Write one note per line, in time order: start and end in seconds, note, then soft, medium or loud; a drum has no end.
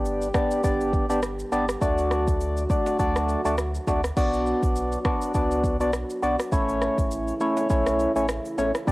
0.00 0.31 G1 loud
0.00 1.79 D3 medium
0.00 1.79 G3 medium
0.00 0.28 B3 loud
0.00 1.79 B3 medium
0.00 0.28 D4 medium
0.00 0.28 G4 medium
0.00 1.79 G4 medium
0.00 0.28 D5 loud
0.05 shaker medium
0.22 shaker medium
0.34 0.62 B3 medium
0.34 0.62 D4 medium
0.34 0.62 G4 medium
0.34 0.62 D5 medium
0.34 kick loud
0.34 cross-stick loud
0.34 shaker medium
0.51 shaker medium
0.64 1.00 G1 loud
0.64 1.06 B3 medium
0.64 1.06 D4 medium
0.64 1.06 G4 medium
0.64 1.06 D5 loud
0.64 kick loud
0.64 shaker medium
0.81 shaker medium
0.93 kick loud
0.93 shaker medium
1.09 1.43 G1 medium
1.09 1.20 B3 medium
1.09 1.20 D4 medium
1.09 1.20 G4 medium
1.09 1.21 D5 medium
1.09 shaker medium
1.23 cross-stick medium
1.23 shaker medium
1.39 shaker medium
1.52 1.75 G1 loud
1.52 1.66 B3 medium
1.52 1.66 D4 medium
1.52 1.66 G4 medium
1.52 1.66 D5 medium
1.52 shaker medium
1.69 cross-stick medium
1.69 shaker medium
1.81 2.66 D2 loud
1.81 4.00 D3 medium
1.81 4.00 F#3 medium
1.81 2.64 A3 loud
1.81 4.00 A3 medium
1.81 2.64 D4 medium
1.81 4.00 F#4 loud
1.81 2.64 F#4 medium
1.81 2.64 D5 loud
1.81 kick loud
1.81 shaker medium
1.98 shaker medium
2.11 cross-stick medium
2.11 shaker soft
2.28 kick medium
2.28 shaker medium
2.41 shaker medium
2.57 shaker medium
2.70 2.97 A3 medium
2.70 2.97 D4 medium
2.70 2.97 F#4 medium
2.70 2.97 D5 medium
2.70 kick loud
2.70 shaker medium
2.86 high timbale medium
2.86 shaker medium
2.99 3.36 D2 loud
2.99 3.41 A3 loud
2.99 3.41 D4 medium
2.99 3.41 F#4 medium
2.99 3.41 D5 loud
2.99 kick medium
2.99 shaker medium
3.16 cross-stick medium
3.16 shaker medium
3.29 shaker medium
3.45 3.79 D2 medium
3.45 3.56 A3 medium
3.45 3.56 D4 medium
3.45 3.56 F#4 medium
3.45 3.56 D5 medium
3.45 shaker medium
3.58 cross-stick medium
3.58 shaker medium
3.75 shaker medium
3.87 4.11 D2 medium
3.87 4.01 A3 medium
3.87 4.01 D4 medium
3.87 4.01 F#4 medium
3.87 4.01 D5 medium
3.87 kick medium
3.87 high timbale medium
3.87 shaker medium
4.04 cross-stick medium
4.04 shaker medium
4.17 4.53 B1 loud
4.17 6.50 F#3 medium
4.17 4.99 B3 medium
4.17 6.50 B3 medium
4.17 4.99 D4 medium
4.17 6.50 D4 medium
4.17 6.50 F#4 medium
4.17 4.99 F#4 medium
4.17 4.99 D5 loud
4.17 kick loud
4.17 crash medium
4.17 shaker medium
4.33 shaker medium
4.46 shaker soft
4.63 4.96 B1 loud
4.63 kick medium
4.63 shaker medium
4.76 shaker medium
4.92 shaker medium
5.05 5.32 B3 medium
5.05 5.33 D4 medium
5.05 5.33 F#4 medium
5.05 5.33 D5 medium
5.05 kick loud
5.05 cross-stick loud
5.05 shaker medium
5.21 shaker medium
5.34 5.82 C#2 medium
5.34 5.76 B3 loud
5.34 5.77 D4 medium
5.34 5.77 F#4 medium
5.34 5.77 D5 loud
5.34 kick loud
5.34 shaker medium
5.51 shaker medium
5.64 kick medium
5.64 shaker medium
5.80 6.04 B1 medium
5.80 5.91 B3 medium
5.80 5.91 D4 medium
5.80 5.91 F#4 medium
5.80 5.91 D5 medium
5.80 shaker medium
5.93 cross-stick medium
5.93 shaker medium
6.10 shaker medium
6.22 6.36 B1 medium
6.22 6.36 B3 medium
6.22 6.36 D4 medium
6.22 6.36 F#4 medium
6.22 6.36 D5 medium
6.22 shaker medium
6.39 cross-stick medium
6.39 shaker medium
6.52 6.88 A1 loud
6.52 8.85 C#3 medium
6.52 8.85 E3 medium
6.52 7.34 A3 loud
6.52 8.85 A3 medium
6.52 7.34 C#4 medium
6.52 7.34 E4 medium
6.52 8.85 E4 loud
6.52 7.34 C#5 loud
6.52 kick loud
6.52 shaker medium
6.69 shaker medium
6.82 cross-stick medium
6.82 shaker soft
6.98 7.32 A1 medium
6.98 kick medium
6.98 shaker medium
7.11 shaker medium
7.28 shaker medium
7.40 7.68 A3 medium
7.40 7.68 C#4 medium
7.40 7.68 E4 medium
7.40 7.68 C#5 medium
7.40 shaker medium
7.57 high timbale medium
7.57 shaker medium
7.70 8.06 B1 loud
7.70 8.12 A3 medium
7.70 8.12 C#4 medium
7.70 8.12 E4 medium
7.70 8.12 C#5 loud
7.70 kick medium
7.70 shaker medium
7.86 cross-stick medium
7.86 shaker medium
7.99 shaker medium
8.16 8.39 A1 medium
8.16 8.26 A3 medium
8.16 8.26 C#4 medium
8.16 8.27 E4 medium
8.16 8.27 C#5 medium
8.16 shaker medium
8.29 cross-stick loud
8.29 shaker medium
8.45 shaker medium
8.58 8.71 A1 medium
8.58 8.72 A3 medium
8.58 8.72 C#4 medium
8.58 8.72 E4 medium
8.58 8.72 C#5 medium
8.58 high timbale medium
8.58 shaker medium
8.75 cross-stick medium
8.75 shaker medium
8.87 8.92 G1 loud
8.87 8.92 D3 medium
8.87 8.92 G3 medium
8.87 8.92 B3 loud
8.87 8.92 B3 medium
8.87 8.92 D4 medium
8.87 8.92 G4 medium
8.87 8.92 D5 loud
8.87 kick loud
8.87 shaker medium